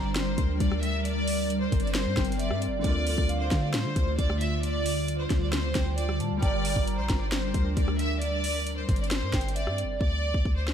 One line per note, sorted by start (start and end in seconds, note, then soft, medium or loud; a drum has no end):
0.00 0.36 G1 loud
0.00 2.78 G3 medium
0.00 2.80 G3 medium
0.00 1.03 D4 medium
0.00 2.79 G4 medium
0.00 2.81 A#4 loud
0.00 2.81 A#4 medium
0.00 2.83 D5 medium
0.00 0.13 A#5 loud
0.05 0.13 D5 medium
0.15 0.58 C5 medium
0.15 snare loud
0.15 closed hi-hat medium
0.38 0.59 D2 loud
0.38 kick loud
0.38 closed hi-hat medium
0.60 1.68 D2 loud
0.60 0.78 D5 medium
0.60 kick medium
0.60 closed hi-hat medium
0.72 cross-stick loud
0.83 1.00 E5 medium
0.83 closed hi-hat medium
1.05 2.83 C4 medium
1.05 1.58 D5 loud
1.05 closed hi-hat medium
1.28 open hi-hat loud
1.50 closed hi-hat medium
1.61 1.78 C5 medium
1.72 2.07 G1 loud
1.72 kick loud
1.72 closed hi-hat medium
1.80 closed hi-hat medium
1.84 1.92 D5 loud
1.84 closed hi-hat soft
1.94 2.37 C5 medium
1.94 snare loud
1.94 closed hi-hat medium
2.06 2.17 G2 loud
2.17 2.52 G1 loud
2.17 2.38 G5 medium
2.17 kick loud
2.17 snare loud
2.17 closed hi-hat medium
2.25 closed hi-hat medium
2.32 closed hi-hat medium
2.39 2.57 D5 medium
2.39 2.61 E5 medium
2.39 closed hi-hat medium
2.51 2.69 G2 loud
2.51 cross-stick loud
2.62 2.83 D5 medium
2.62 closed hi-hat medium
2.67 2.83 G1 loud
2.79 6.36 D3 medium
2.79 6.38 A3 medium
2.84 3.17 D2 loud
2.84 6.39 D3 medium
2.84 4.62 A3 medium
2.84 6.39 F4 loud
2.84 6.39 F4 medium
2.84 3.37 D5 loud
2.84 3.26 D5 loud
2.84 kick loud
2.84 closed hi-hat medium
2.89 6.41 D5 medium
3.07 open hi-hat loud
3.18 3.50 D2 loud
3.18 kick medium
3.29 3.71 F5 medium
3.29 closed hi-hat medium
3.40 3.57 C5 medium
3.51 3.75 D3 loud
3.51 kick loud
3.51 snare medium
3.51 closed hi-hat medium
3.63 3.71 D5 medium
3.74 3.86 A2 loud
3.74 4.16 C5 medium
3.74 snare loud
3.74 closed hi-hat medium
3.85 3.96 D3 loud
3.96 4.18 D2 loud
3.96 kick medium
3.96 closed hi-hat medium
4.19 5.27 D2 loud
4.19 4.36 D5 loud
4.19 kick medium
4.19 closed hi-hat medium
4.30 cross-stick loud
4.41 4.58 E5 medium
4.41 closed hi-hat medium
4.63 9.97 G3 medium
4.63 5.16 D5 loud
4.63 closed hi-hat medium
4.86 open hi-hat loud
5.08 closed hi-hat medium
5.19 5.36 C5 medium
5.30 5.74 D2 loud
5.30 kick loud
5.30 snare medium
5.30 closed hi-hat medium
5.42 5.50 D5 loud
5.53 5.95 C5 medium
5.53 snare loud
5.53 closed hi-hat medium
5.75 6.22 D2 loud
5.75 6.17 G5 medium
5.75 kick loud
5.75 snare loud
5.75 closed hi-hat medium
5.98 6.15 D5 medium
5.98 closed hi-hat medium
6.09 cross-stick loud
6.20 6.33 A2 loud
6.20 6.41 A5 loud
6.20 closed hi-hat medium
6.31 6.42 D2 loud
6.37 9.94 G3 medium
6.37 9.96 G4 medium
6.42 6.75 G1 loud
6.42 8.20 D4 medium
6.42 9.97 A#4 loud
6.42 9.97 A#4 medium
6.42 6.95 D5 loud
6.42 6.85 G5 loud
6.42 kick loud
6.42 closed hi-hat medium
6.47 9.99 D5 medium
6.65 open hi-hat loud
6.76 7.00 G1 loud
6.76 kick medium
6.87 7.29 A#5 loud
6.87 closed hi-hat medium
6.98 7.09 A#1 loud
6.98 7.16 C5 medium
7.10 7.53 G1 loud
7.10 kick loud
7.10 snare medium
7.10 closed hi-hat medium
7.21 7.29 D5 medium
7.32 7.74 C5 medium
7.32 snare loud
7.32 closed hi-hat medium
7.54 7.76 D2 loud
7.54 kick loud
7.54 closed hi-hat medium
7.77 8.85 D2 loud
7.77 7.94 D5 medium
7.77 kick medium
7.77 closed hi-hat medium
7.88 cross-stick loud
7.99 8.16 E5 medium
7.99 closed hi-hat medium
8.22 9.99 C4 medium
8.22 8.74 D5 loud
8.22 closed hi-hat medium
8.44 open hi-hat loud
8.67 closed hi-hat medium
8.77 8.95 C5 medium
8.89 9.24 G1 loud
8.89 kick loud
8.89 closed hi-hat medium
8.96 closed hi-hat medium
9.00 9.09 D5 loud
9.00 closed hi-hat soft
9.11 9.53 C5 medium
9.11 snare loud
9.11 closed hi-hat medium
9.22 9.33 G2 loud
9.34 9.69 G1 loud
9.34 9.55 G5 medium
9.34 kick medium
9.34 snare loud
9.34 closed hi-hat medium
9.41 closed hi-hat medium
9.48 closed hi-hat medium
9.56 9.73 D5 medium
9.56 9.77 E5 medium
9.56 closed hi-hat medium
9.67 9.85 G2 loud
9.67 cross-stick loud
9.78 10.00 D5 medium
9.78 closed hi-hat medium
9.84 10.00 G1 loud
10.01 10.33 D2 loud
10.01 10.53 D5 loud
10.01 kick loud
10.34 10.45 D2 medium
10.34 kick medium
10.45 10.74 D2 loud
10.45 kick medium
10.57 10.74 C5 medium
10.68 snare medium